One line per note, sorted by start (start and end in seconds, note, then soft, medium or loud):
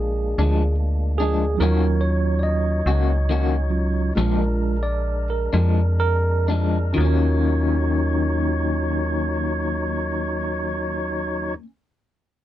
0.00 0.35 A#1 medium
0.00 1.55 G#3 soft
0.00 1.56 G#3 medium
0.00 1.56 A#3 medium
0.00 1.55 D4 soft
0.00 1.56 D4 medium
0.00 1.56 F4 medium
0.00 0.74 G#4 medium
0.38 1.57 D2 medium
0.38 0.64 F3 soft
0.38 0.64 G#3 soft
0.38 0.63 D4 medium
1.18 1.45 G#3 soft
1.18 1.44 D4 medium
1.18 1.58 G#4 medium
1.23 1.46 F3 soft
1.57 2.82 D#2 medium
1.57 2.80 F#3 medium
1.57 2.81 C#4 soft
1.57 2.81 F4 soft
1.57 2.00 A#4 medium
1.61 1.85 D#3 medium
1.61 4.14 F#3 medium
1.61 1.86 A#3 medium
1.61 1.86 C#4 medium
1.61 4.14 D#4 medium
1.61 1.86 F#4 medium
1.61 4.14 C#5 medium
2.01 2.42 C#5 medium
2.39 2.44 D5 medium
2.39 4.34 D#5 medium
2.86 4.12 C#2 loud
2.86 3.13 A#3 soft
2.86 3.13 C#4 medium
2.86 3.12 F#4 medium
3.29 3.55 D#3 medium
3.29 3.55 A#3 medium
3.29 3.56 C#4 medium
3.29 3.56 F#4 medium
3.69 4.11 F#3 soft
3.69 4.11 C#4 soft
3.69 4.11 F4 soft
4.15 5.49 A#1 medium
4.15 4.43 A#2 medium
4.15 4.43 F3 medium
4.15 4.75 G#3 soft
4.15 6.94 G#3 medium
4.15 4.44 G#3 medium
4.15 4.75 D4 soft
4.15 6.94 D4 medium
4.15 4.44 D4 medium
4.15 4.75 F4 medium
4.15 6.94 A#4 medium
4.39 4.82 A#4 medium
4.83 5.27 D5 medium
5.30 5.98 A#4 medium
5.53 6.93 F2 medium
5.53 5.82 F3 soft
5.53 5.81 G#3 soft
5.53 5.81 D4 soft
6.00 6.46 A#4 medium
6.48 6.79 F3 soft
6.48 6.78 G#3 soft
6.48 6.77 D4 soft
6.93 11.56 D#3 medium
6.93 11.54 F#3 medium
6.93 11.51 C#4 medium
6.93 11.52 F4 medium
6.93 11.53 F#4 medium
6.93 11.54 A#4 medium
6.93 11.54 C#5 medium
6.98 11.55 D#2 medium
6.98 11.62 A#3 medium
6.98 11.56 D#4 medium
7.05 11.66 C#4 medium